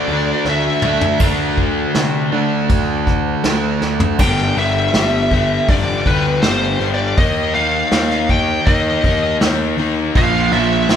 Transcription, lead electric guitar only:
Already playing: D5
0.50 E5
4.20 G5
4.58 E5
5.70 D5
6.07 B4
6.42 C5
6.94 D5
7.18 D#5
7.55 F5
8.30 G5
8.65 D#5
10.17 F5
10.53 E5

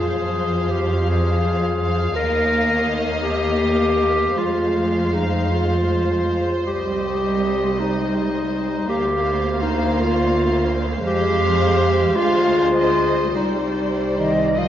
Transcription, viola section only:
Already playing: F3
2.16 A#3
4.37 G#3
6.65 G3
8.89 A#3
11.05 G#3
12.17 G#3
13.35 G3

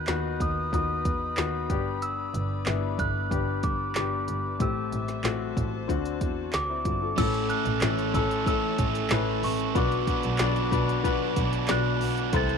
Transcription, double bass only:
0.08 D#2
0.40 D#2
0.73 D#2
1.05 E2
1.37 D#2
1.70 G1
2.34 G1
2.67 G1
2.99 G1
3.31 G1
3.63 G1
3.96 G1
4.28 G1
4.60 A1
4.93 A1
5.24 A1
5.57 A1
5.89 D2
6.21 E2
6.52 D2
6.85 G1
7.17 A1
7.66 A1
7.81 A1
8.14 A1
8.79 A1
9.11 A1
9.43 A1
9.76 B1
10.24 B1
10.40 B1
10.72 B1
11.36 B1
11.70 B1
12.01 B1
12.33 C2

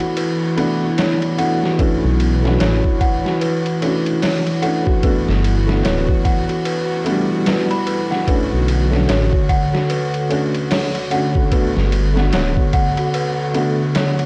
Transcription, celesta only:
Already playing: B4 C#5 F#5
0.00 F#4
0.17 B4
0.98 C#5
1.38 F#5
1.63 F#4
1.79 B4
2.60 C#5
3.01 F#5
3.25 F#4
3.41 B4
4.22 C#5
4.62 F#5
4.87 F#4
5.03 B4
5.84 C#5
6.25 F#5
6.49 F#4
6.65 B4
7.47 B4
7.71 B5
7.87 B4
8.11 F#5
8.28 B4
9.09 C#5
9.49 F#5
9.73 F#4
9.90 B4
10.71 C#5
11.11 F#5
11.35 F#4
11.52 B4
12.33 C#5
12.73 F#5
12.98 F#4
13.14 B4
13.95 C#5

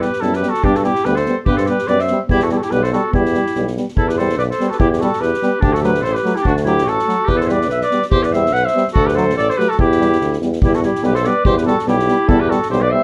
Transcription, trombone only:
0.22 G3
0.42 G3
0.63 G3
0.84 G3
1.06 G3
1.27 G3
1.48 G3
1.69 G3
1.88 G3
2.11 G3
2.31 G3
2.51 G3
2.72 G3
2.93 G3
3.14 G3
3.35 G3
3.57 G3
3.77 G3
4.19 G3
4.60 G3
5.02 G3
5.42 G3
5.83 F#3
6.24 F#3
6.65 F#3
7.07 F#3
7.49 G3
7.92 G3
8.34 G3
8.75 G3
9.17 F#3
9.57 F#3
10.00 G3
10.42 G3
10.62 G3
10.83 G3
11.03 G3
11.25 G3
11.45 G3
11.67 G3
11.87 G3
12.07 G3
12.29 G3
12.50 G3
12.71 G3
12.92 G3

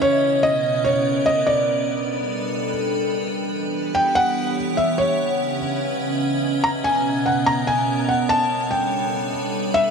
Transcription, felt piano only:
0.02 C#5
0.43 D#5
0.85 C#5
1.26 D#5
1.47 D5
3.95 G5
4.15 F#5
4.77 E5
4.98 C#5
6.64 A#5
6.84 G#5
7.26 F#5
7.46 A#5
7.67 G#5
8.09 F#5
8.29 A5
8.71 G5
9.74 E5

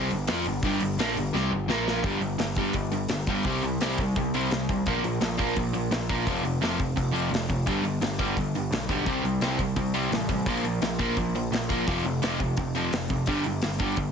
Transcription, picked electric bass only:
0.11 G1
0.28 F2
0.46 G1
0.62 G1
0.80 G1
0.97 A#1
1.15 G1
1.33 C2
1.51 G1
1.67 A#1
2.04 G1
2.20 G1
2.38 G1
2.74 G1
3.09 G1
3.45 C2
3.63 C2
3.80 C2
4.15 C2
4.51 C2
4.86 A#1
5.04 A#1
5.20 A#1
5.56 A#1
5.91 A#1
6.27 F1
6.43 F1
6.60 F1
6.97 F1
7.31 F1
7.67 G1
7.83 G1
8.00 G1
8.36 G1
8.71 B1
9.06 C2
9.23 C2
9.40 C2
9.76 C2
10.10 A1
10.46 A#1
10.63 A#1
10.81 A#1
11.17 A#1
11.51 A#1
11.87 F1
12.04 F1
12.22 F1
12.57 F1
12.92 F1
13.27 G1
13.45 G1
13.62 G1
13.97 G1

